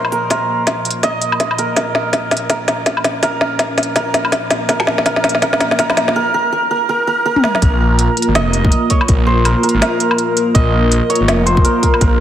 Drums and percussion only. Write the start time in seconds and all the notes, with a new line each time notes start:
0.05 low woodblock
0.12 closed hi-hat
0.30 kick, snare, closed hi-hat
0.67 kick, snare, closed hi-hat
0.85 closed hi-hat
0.91 closed hi-hat
1.03 kick, snare, closed hi-hat
1.22 closed hi-hat
1.32 low woodblock
1.40 kick, snare, closed hi-hat
1.51 low woodblock
1.58 closed hi-hat
1.76 kick, snare, closed hi-hat
1.95 snare
2.13 kick, snare, closed hi-hat
2.31 snare, closed hi-hat
2.37 closed hi-hat
2.50 kick, snare, closed hi-hat
2.68 snare, closed hi-hat
2.86 kick, snare, closed hi-hat
2.97 low woodblock
3.04 snare, closed hi-hat
3.23 kick, snare, closed hi-hat
3.41 snare
3.59 kick, snare, closed hi-hat
3.78 snare, closed hi-hat
3.83 closed hi-hat
3.96 kick, snare, closed hi-hat
4.14 snare, closed hi-hat
4.25 low woodblock
4.32 kick, snare, closed hi-hat
4.50 snare, closed hi-hat
4.69 kick, snare, closed hi-hat
4.80 snare
4.87 snare
4.98 snare
5.06 kick, snare, closed hi-hat
5.16 snare
5.24 snare, closed hi-hat
5.29 closed hi-hat
5.35 snare
5.42 kick, snare, closed hi-hat
5.53 snare
5.60 snare, closed hi-hat
5.71 snare
5.79 kick, snare, closed hi-hat
5.90 snare, low woodblock
5.97 snare, closed hi-hat
6.08 snare
7.36 high tom
7.44 snare
7.55 snare
7.62 kick, closed hi-hat
7.99 closed hi-hat
8.17 closed hi-hat
8.22 closed hi-hat
8.35 snare, closed hi-hat
8.53 closed hi-hat
8.65 kick
8.72 closed hi-hat
8.90 kick, closed hi-hat
9.01 low woodblock
9.08 kick, closed hi-hat
9.45 closed hi-hat, low woodblock
9.63 closed hi-hat
9.69 closed hi-hat
9.82 snare, closed hi-hat
10.00 closed hi-hat
10.11 low woodblock
10.18 closed hi-hat
10.37 closed hi-hat
10.55 kick, closed hi-hat
10.92 closed hi-hat
11.10 closed hi-hat
11.15 closed hi-hat
11.28 snare, closed hi-hat
11.47 closed hi-hat
11.57 kick
11.65 closed hi-hat
11.83 kick, closed hi-hat
11.94 low woodblock
12.01 kick, closed hi-hat